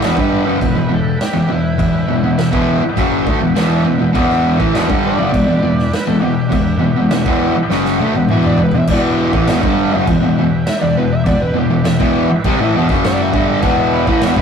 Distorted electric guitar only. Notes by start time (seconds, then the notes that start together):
0.02 E2 B2
0.17 G2 D3 G3
0.46 F#2 C#3
0.60 E2 B2
0.74 E2 B2
0.89 E2 B2
1.33 E2 B2
1.49 E2 B2
1.78 E2 B2
2.08 E2 B2
2.24 E2 B2
2.38 E2 B2
2.52 E2 B2 E3
2.83 muted distorted electric guitar stroke
2.96 F#2 C#3 F#3
3.26 D3 A3
3.40 E2 B2
3.55 E2 B2 E3
3.85 E2 B2
3.98 E2 B2
4.13 E2 B2 E3
4.59 A2 E3
4.74 E2 B2
4.89 G2 D3 G3
5.18 F#2 C#3
5.32 E2 B2
5.47 E2 B2
5.62 E2 B2
6.07 E2 B2
6.22 E2 B2
6.50 E2 B2
6.79 E2 B2
6.96 E2 B2
7.11 E2 B2
7.26 E2 B2 E3
7.56 muted distorted electric guitar stroke
7.70 F#2 C#3 F#3
8.00 D3 A3
8.16 E2 B2
8.30 E2 B2 E3
8.60 E2 B2
8.75 E2 B2
8.90 E2 B2 E3
9.33 A2 E3
9.46 E2 B2
9.62 G2 D3 G3
9.92 F#2 C#3
10.07 E2 B2
10.22 E2 B2
10.38 E2 B2
10.81 E2 B2
10.97 E2 B2
11.25 E2 B2
11.54 E2 B2
11.70 E2 B2
11.84 E2 B2
11.99 E2 B2 E3
12.31 muted distorted electric guitar stroke
12.45 C3 G3
12.59 A2 E3
12.74 E2 B2
12.88 F#2 C#3 F#3
13.33 G2 D3 G3
13.62 E2 B2 E3
14.06 A2 E3
14.23 E2 B2
14.36 G2 D3 G3